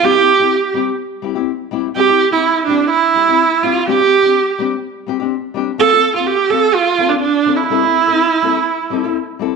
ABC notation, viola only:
X:1
M:4/4
L:1/16
Q:"Swing 16ths" 1/4=125
K:C
V:1 name="Viola"
G6 z8 z2 | G3 E3 D2 E6 F2 | G6 z8 z2 | A3 F G2 A2 F3 D D3 E |
E12 z4 |]